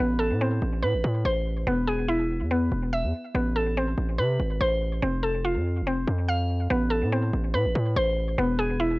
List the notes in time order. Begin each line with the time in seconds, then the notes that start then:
0.00 A1 B3
0.19 A4
0.31 A2
0.41 C4
0.62 A1
0.83 A2 B4
0.94 A1
1.04 A2
1.25 A1 C5
1.67 E1 B3
1.87 G#4
2.08 E4
2.41 E2
2.51 B3
2.72 E1
2.93 E5
3.04 E2
3.35 A1 B3
3.56 A4
3.77 C4
3.98 A1
4.18 C3 B4
4.40 G#1
4.61 A1 C5
5.02 F1 C4
5.23 A4
5.45 F4
5.56 F2
5.82 F1
5.87 C4
6.07 F2
6.29 F5
6.70 A1 B3
6.90 A4
7.02 A2
7.12 C4
7.33 A1
7.54 A2 B4
7.65 A1
7.75 A2
7.96 A1 C5
8.38 E1 B3
8.59 G#4
8.80 E4